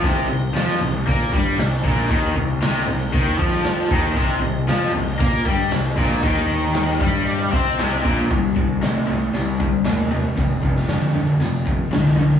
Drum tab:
HH |x---x---x---x---|x---x---x---x---|x---x---x---x---|x---x---x---x---|
SD |----o-------oo--|----o------oo---|----o-------oo--|----o-------o---|
BD |o-------o-o---o-|o-------o-o---o-|o-------o-o---o-|o-----o---o---o-|

HH |x---x---x---x---|x---x---x---x---|
SD |----o-------o---|---oo-------o---|
BD |o-o-------o-----|o-o-------o-----|